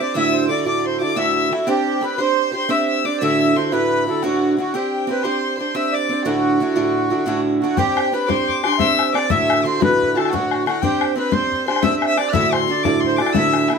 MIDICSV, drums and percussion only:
0, 0, Header, 1, 2, 480
1, 0, Start_track
1, 0, Tempo, 338219
1, 219, Time_signature, 9, 3, 24, 8
1, 19564, End_track
2, 0, Start_track
2, 0, Title_t, "Bodhran"
2, 11031, Note_on_c, 9, 64, 68
2, 11173, Note_off_c, 9, 64, 0
2, 11310, Note_on_c, 9, 64, 65
2, 11452, Note_off_c, 9, 64, 0
2, 11770, Note_on_c, 9, 64, 80
2, 11912, Note_off_c, 9, 64, 0
2, 12046, Note_on_c, 9, 64, 25
2, 12188, Note_off_c, 9, 64, 0
2, 12258, Note_on_c, 9, 64, 63
2, 12378, Note_off_c, 9, 64, 0
2, 12378, Note_on_c, 9, 64, 53
2, 12481, Note_off_c, 9, 64, 0
2, 12481, Note_on_c, 9, 64, 80
2, 12622, Note_off_c, 9, 64, 0
2, 12758, Note_on_c, 9, 64, 61
2, 12900, Note_off_c, 9, 64, 0
2, 12989, Note_on_c, 9, 64, 65
2, 13131, Note_off_c, 9, 64, 0
2, 13201, Note_on_c, 9, 64, 75
2, 13343, Note_off_c, 9, 64, 0
2, 13481, Note_on_c, 9, 64, 71
2, 13623, Note_off_c, 9, 64, 0
2, 13938, Note_on_c, 9, 64, 89
2, 14080, Note_off_c, 9, 64, 0
2, 14226, Note_on_c, 9, 64, 26
2, 14368, Note_off_c, 9, 64, 0
2, 14439, Note_on_c, 9, 64, 61
2, 14552, Note_off_c, 9, 64, 0
2, 14552, Note_on_c, 9, 64, 56
2, 14675, Note_off_c, 9, 64, 0
2, 14675, Note_on_c, 9, 64, 70
2, 14817, Note_off_c, 9, 64, 0
2, 14921, Note_on_c, 9, 64, 60
2, 15063, Note_off_c, 9, 64, 0
2, 15146, Note_on_c, 9, 64, 65
2, 15288, Note_off_c, 9, 64, 0
2, 15365, Note_on_c, 9, 64, 65
2, 15507, Note_off_c, 9, 64, 0
2, 15627, Note_on_c, 9, 64, 73
2, 15769, Note_off_c, 9, 64, 0
2, 16067, Note_on_c, 9, 64, 79
2, 16209, Note_off_c, 9, 64, 0
2, 16352, Note_on_c, 9, 64, 24
2, 16494, Note_off_c, 9, 64, 0
2, 16579, Note_on_c, 9, 64, 66
2, 16693, Note_off_c, 9, 64, 0
2, 16693, Note_on_c, 9, 64, 63
2, 16787, Note_off_c, 9, 64, 0
2, 16787, Note_on_c, 9, 64, 88
2, 16929, Note_off_c, 9, 64, 0
2, 17059, Note_on_c, 9, 64, 58
2, 17201, Note_off_c, 9, 64, 0
2, 17278, Note_on_c, 9, 64, 62
2, 17420, Note_off_c, 9, 64, 0
2, 17509, Note_on_c, 9, 64, 78
2, 17651, Note_off_c, 9, 64, 0
2, 17779, Note_on_c, 9, 64, 64
2, 17921, Note_off_c, 9, 64, 0
2, 18237, Note_on_c, 9, 64, 79
2, 18378, Note_off_c, 9, 64, 0
2, 18498, Note_on_c, 9, 64, 27
2, 18640, Note_off_c, 9, 64, 0
2, 18710, Note_on_c, 9, 64, 64
2, 18825, Note_off_c, 9, 64, 0
2, 18825, Note_on_c, 9, 64, 59
2, 18940, Note_off_c, 9, 64, 0
2, 18940, Note_on_c, 9, 64, 85
2, 19082, Note_off_c, 9, 64, 0
2, 19208, Note_on_c, 9, 64, 55
2, 19350, Note_off_c, 9, 64, 0
2, 19440, Note_on_c, 9, 64, 51
2, 19564, Note_off_c, 9, 64, 0
2, 19564, End_track
0, 0, End_of_file